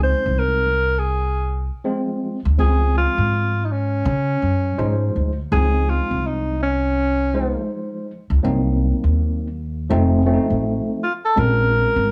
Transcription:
0.00 0.12 C#2 loud
0.00 0.68 F3 medium
0.00 0.69 G#3 medium
0.00 0.69 C4 medium
0.00 0.72 D#4 medium
0.00 0.41 C5 loud
0.26 1.68 C2 medium
0.39 1.01 A#4 medium
0.99 1.72 G#4 medium
1.84 2.39 F3 medium
1.84 2.39 G#3 medium
1.84 2.39 C4 medium
1.84 2.39 F4 medium
2.45 2.56 D2 medium
2.58 3.05 C#2 medium
2.58 3.61 F3 medium
2.58 3.61 G#3 medium
2.58 3.61 C4 medium
2.58 3.62 F4 medium
2.58 2.93 G#4 loud
2.97 3.66 F4 loud
3.18 4.01 G#2 medium
3.65 3.74 D#4 medium
3.72 5.17 C#4 medium
4.05 4.34 C#3 loud
4.42 4.70 F#2 medium
4.78 5.07 G#2 medium
4.78 5.32 F3 medium
4.78 5.32 G#3 medium
4.78 5.32 D#4 medium
4.78 5.32 C5 medium
5.16 5.44 D2 medium
5.51 5.98 C#2 loud
5.51 5.60 E3 medium
5.51 6.54 G#3 medium
5.51 6.55 C4 medium
5.51 6.55 D#4 medium
5.51 5.91 G#4 loud
5.58 6.58 F3 medium
5.90 6.28 F4 medium
6.11 7.53 C2 medium
6.27 6.62 D#4 medium
6.63 7.68 C#4 medium
7.34 8.10 F3 medium
7.34 8.10 G#3 medium
7.34 8.11 D#4 medium
7.34 8.10 C5 medium
8.30 8.41 C#2 medium
8.43 8.90 C2 loud
8.43 9.46 F#3 medium
8.43 9.46 A#3 medium
8.43 9.47 C4 medium
8.43 9.47 D#4 medium
9.04 9.87 D#2 medium
9.90 10.36 F1 loud
9.90 10.21 F3 medium
9.90 10.21 A3 medium
9.90 10.22 C4 medium
9.90 10.22 D#4 loud
10.26 11.02 F3 medium
10.26 11.03 A3 medium
10.26 11.03 C4 medium
10.26 10.35 C#4 medium
10.34 11.06 D#4 loud
10.50 10.78 A1 medium
11.03 11.13 F4 medium
11.25 11.40 A4 medium
11.36 11.83 A#1 medium
11.36 12.12 G#3 medium
11.36 12.12 C4 medium
11.36 12.12 C#4 medium
11.36 12.12 F4 medium
11.36 12.12 A#4 medium
11.96 12.12 G#1 medium

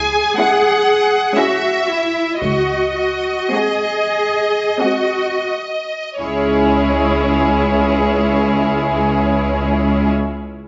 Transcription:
0.00 0.19 C#2 soft
0.00 1.37 G#4 soft
0.00 0.36 G#5 medium
0.38 1.13 G#3 soft
0.38 1.13 C#4 soft
0.38 1.12 E4 soft
0.38 1.12 G#4 soft
0.38 1.34 F#5 medium
1.35 2.15 G#3 soft
1.35 2.15 C#4 soft
1.35 2.15 E4 soft
1.35 1.88 F#4 soft
1.35 2.15 G#4 soft
1.35 2.40 E5 medium
1.89 2.41 E4 soft
2.39 3.32 C#2 soft
2.39 2.94 F#4 soft
2.39 6.16 D#5 medium
2.95 3.52 F#4 soft
3.52 4.49 G#3 soft
3.52 4.49 C4 soft
3.52 4.50 F#4 soft
3.52 4.80 G#4 soft
3.52 4.50 G#4 soft
4.80 5.91 G#3 soft
4.80 5.91 C4 soft
4.80 5.91 F#4 soft
4.80 5.53 F#4 soft
4.80 5.91 G#4 soft
6.20 10.11 C#2 soft
6.20 10.12 C#2 soft
6.20 10.12 G#3 soft
6.20 10.12 C#4 soft
6.20 10.11 E4 soft
6.20 10.11 G#4 soft
6.20 10.12 C#5 soft

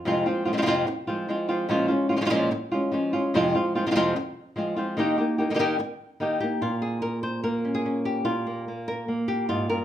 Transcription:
0.05 0.25 F2 medium
0.05 0.25 C3 medium
0.05 0.25 F3 medium
0.05 0.26 G#3 medium
0.05 0.25 C4 medium
0.05 0.24 F4 loud
0.26 0.47 F3 soft
0.26 0.46 G#3 medium
0.26 0.45 C4 medium
0.26 0.44 F4 medium
0.45 0.52 F3 soft
0.45 0.52 G#3 medium
0.45 0.53 C4 medium
0.45 0.53 F4 medium
0.53 0.56 C3 medium
0.53 0.57 F3 medium
0.53 0.57 G#3 medium
0.53 0.57 C4 medium
0.53 0.57 F4 medium
0.57 0.61 C3 medium
0.57 0.61 F3 medium
0.57 0.61 G#3 medium
0.57 0.62 C4 medium
0.57 0.62 F4 medium
0.62 0.65 C3 medium
0.62 0.66 F3 medium
0.62 0.66 G#3 medium
0.62 0.66 C4 medium
0.62 0.67 F4 medium
0.66 0.85 F2 medium
0.66 0.86 C3 medium
0.66 0.86 F3 medium
0.66 0.86 G#3 medium
0.66 0.87 C4 loud
0.66 0.87 F4 medium
0.87 muted nylon-string guitar stroke medium
1.07 1.27 F3 soft
1.07 1.28 G#3 soft
1.07 1.28 C4 medium
1.07 1.27 F4 medium
1.28 1.48 F3 medium
1.28 1.48 G#3 medium
1.28 1.48 C4 medium
1.28 1.47 F4 medium
1.49 1.68 F3 medium
1.49 1.68 G#3 soft
1.49 1.69 C4 medium
1.49 1.68 F4 medium
1.69 1.89 A#2 medium
1.69 1.89 F3 medium
1.69 1.89 G#3 medium
1.69 1.88 C#4 medium
1.69 1.87 F4 medium
1.88 2.10 G#3 medium
1.88 2.09 C#4 medium
1.88 2.08 F4 medium
2.09 2.16 G#3 medium
2.09 2.16 C#4 medium
2.09 2.16 F4 medium
2.17 2.20 F3 medium
2.17 2.20 G#3 medium
2.17 2.21 C#4 medium
2.17 2.21 F4 medium
2.21 2.24 F3 medium
2.21 2.24 G#3 medium
2.21 2.25 C#4 medium
2.21 2.25 F4 medium
2.25 2.29 F3 medium
2.25 2.29 G#3 medium
2.25 2.30 C#4 medium
2.25 2.30 F4 medium
2.30 2.50 A#2 medium
2.30 2.50 F3 medium
2.30 2.50 G#3 loud
2.30 2.50 C#4 medium
2.30 2.51 F4 medium
2.51 muted nylon-string guitar stroke medium
2.72 2.91 G#3 soft
2.72 2.92 C#4 medium
2.72 2.91 F4 medium
2.92 3.12 F3 medium
2.92 3.12 G#3 medium
2.92 3.12 C#4 medium
2.92 3.12 F4 medium
3.13 3.33 G#3 soft
3.13 3.33 C#4 medium
3.13 3.32 F4 medium
3.34 3.53 F2 medium
3.34 3.54 C3 medium
3.34 3.54 F3 medium
3.34 3.54 G#3 medium
3.34 3.54 C4 medium
3.34 3.54 F4 loud
3.55 3.75 F3 soft
3.55 3.75 G#3 medium
3.55 3.74 C4 medium
3.55 3.74 F4 medium
3.75 3.85 F3 medium
3.75 3.86 G#3 medium
3.75 3.86 C4 medium
3.75 3.86 F4 medium
3.86 3.90 C3 medium
3.86 3.90 F3 medium
3.86 3.90 G#3 medium
3.86 3.90 C4 medium
3.86 3.91 F4 medium
3.91 3.94 C3 medium
3.91 3.95 F3 medium
3.91 3.95 G#3 medium
3.91 3.96 C4 medium
3.91 3.96 F4 medium
3.96 4.15 F2 medium
3.96 4.15 C3 medium
3.96 4.15 F3 medium
3.96 4.15 G#3 medium
3.96 4.15 C4 loud
3.96 4.15 F4 medium
4.16 muted nylon-string guitar stroke medium
4.56 4.76 F3 medium
4.56 4.76 G#3 medium
4.56 4.76 C4 medium
4.56 4.75 F4 medium
4.76 4.96 F3 soft
4.76 4.97 G#3 soft
4.76 4.97 C4 medium
4.76 4.96 F4 medium
4.97 5.17 D#3 medium
4.97 5.17 A#3 medium
4.97 5.18 D#4 medium
4.97 5.17 G4 medium
5.18 5.39 A#3 soft
5.18 5.38 D#4 soft
5.18 5.37 G4 medium
5.38 5.49 A#3 soft
5.38 5.50 D#4 medium
5.38 5.50 G4 medium
5.50 5.53 D#3 medium
5.50 5.54 A#3 medium
5.50 5.54 D#4 medium
5.50 5.55 G4 medium
5.54 5.58 D#3 medium
5.54 5.58 A#3 medium
5.54 5.59 D#4 medium
5.54 5.59 G4 medium
5.59 5.78 D#3 medium
5.59 5.78 A#3 medium
5.59 5.79 D#4 medium
5.59 5.79 G4 loud
5.79 muted nylon-string guitar stroke medium
6.20 6.40 D#3 medium
6.20 6.40 A#3 medium
6.20 6.40 D#4 medium
6.20 6.39 G4 medium
6.40 6.62 A#3 soft
6.40 6.61 D#4 soft
6.40 6.61 G4 medium
6.61 8.24 A#2 medium
6.61 7.01 F4 medium
6.82 7.43 G#4 medium
7.02 7.23 A#4 medium
7.23 7.43 C5 medium
7.44 8.23 A#3 medium
7.44 8.15 A#4 medium
7.65 7.84 C#4 soft
7.75 8.05 G#4 medium
7.86 8.24 C#4 soft
8.05 8.67 G4 medium
8.25 9.85 A#2 medium
8.25 9.28 F4 medium
8.46 8.67 A#3 soft
8.68 9.07 A#3 soft
8.88 9.28 A#4 medium
9.08 9.85 A#3 medium
9.28 9.69 G4 medium
9.49 9.70 G#2 medium
9.49 9.85 F4 medium
9.70 9.85 G2 medium
9.70 9.85 A#4 medium

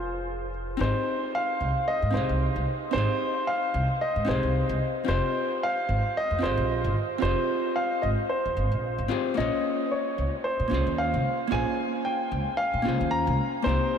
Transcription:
0.00 0.77 F1 medium
0.00 0.75 G#3 medium
0.00 0.76 D#4 medium
0.00 0.49 F4 medium
0.00 0.76 F4 medium
0.00 0.78 C5 medium
0.00 0.77 G5 medium
0.77 0.91 G#1 loud
0.77 2.09 C4 medium
0.77 2.10 D#4 medium
0.77 2.11 G4 medium
0.81 2.12 G#4 medium
0.81 1.30 C5 medium
0.81 2.13 D#5 medium
1.35 1.89 F5 loud
1.61 1.71 C2 medium
1.88 2.15 D#5 loud
2.02 2.15 G#2 medium
2.11 2.24 C2 medium
2.11 2.90 C4 medium
2.11 2.91 D#4 medium
2.11 2.91 G4 medium
2.11 2.63 C5 medium
2.15 2.92 G#4 medium
2.15 2.93 D#5 medium
2.29 2.47 C2 medium
2.56 2.64 C2 medium
2.91 3.05 G#1 medium
2.91 4.24 C4 medium
2.91 4.24 D#4 medium
2.91 4.25 G4 medium
2.91 3.49 C5 loud
2.96 4.26 G#4 medium
2.96 4.27 D#5 loud
3.47 4.03 F5 loud
3.74 3.85 C2 medium
4.01 4.29 D#5 loud
4.16 4.29 G#2 medium
4.25 4.39 C2 medium
4.25 5.03 C4 medium
4.25 5.04 D#4 medium
4.25 5.05 G4 medium
4.25 4.78 C5 medium
4.29 5.06 G#4 medium
4.29 5.07 D#5 medium
4.43 4.61 C2 medium
4.69 4.78 C2 loud
5.05 5.19 F1 medium
5.05 6.37 C4 medium
5.05 6.38 F4 medium
5.05 6.39 G4 medium
5.05 5.63 C5 loud
5.09 6.40 G#4 medium
5.09 6.40 D#5 loud
5.63 6.18 F5 loud
5.89 5.99 G#1 medium
6.17 6.44 D#5 loud
6.31 6.44 F2 medium
6.39 6.53 G#1 medium
6.39 7.17 C4 medium
6.39 7.19 F4 medium
6.39 7.20 G4 medium
6.43 7.20 G#4 medium
6.43 6.92 C5 loud
6.43 7.21 D#5 loud
6.57 6.86 A#1 medium
6.84 6.92 G#1 medium
7.18 7.33 F1 medium
7.18 8.51 C4 medium
7.18 8.52 F4 medium
7.18 8.53 G4 medium
7.18 7.78 C5 loud
7.23 8.54 G#4 medium
7.23 8.55 D#5 loud
7.76 8.01 F5 loud
8.02 8.14 G#1 medium
8.02 8.08 D#5 medium
8.29 9.06 C5 medium
8.45 8.58 F2 medium
8.57 8.67 G#1 medium
8.72 9.00 A#1 medium
8.98 9.07 G#1 medium
9.08 9.33 C4 medium
9.08 9.34 F4 medium
9.08 9.34 G4 medium
9.08 9.34 G#4 medium
9.08 9.35 C5 loud
9.34 9.48 A#1 medium
9.34 10.67 A#3 medium
9.34 10.67 C#4 medium
9.34 10.68 F4 medium
9.34 9.87 D#5 medium
9.39 10.69 G#4 medium
9.39 10.70 C#5 loud
9.91 10.46 C#5 medium
10.18 10.28 C#2 medium
10.44 10.99 C5 medium
10.60 10.73 A#2 medium
10.68 10.82 C#2 medium
10.68 11.46 A#3 medium
10.68 11.48 C#4 medium
10.68 11.48 F4 medium
10.73 11.49 G#4 medium
10.73 11.50 C5 loud
10.87 11.15 D#2 medium
10.98 11.37 F5 loud
11.14 11.21 C#2 medium
11.47 12.80 A#3 medium
11.47 12.81 C#4 medium
11.47 12.82 F4 medium
11.52 11.62 A#1 medium
11.52 12.83 G#4 medium
11.52 12.84 C5 medium
11.52 12.07 G#5 loud
12.05 12.60 G5 loud
12.32 12.42 C#2 medium
12.57 13.13 F5 loud
12.74 12.87 A#2 medium
12.82 12.96 C#2 medium
12.82 13.61 A#3 medium
12.82 13.62 C#4 medium
12.82 13.62 F4 medium
12.87 13.63 G#4 medium
12.87 13.64 C5 medium
13.01 13.29 D#2 medium
13.11 13.50 A#5 loud
13.27 13.35 C#2 medium
13.62 13.76 C2 loud
13.62 13.98 A#3 medium
13.62 13.98 C4 medium
13.62 13.98 D#4 medium
13.62 13.98 C5 loud
13.67 13.98 G4 medium
13.67 13.98 C5 loud

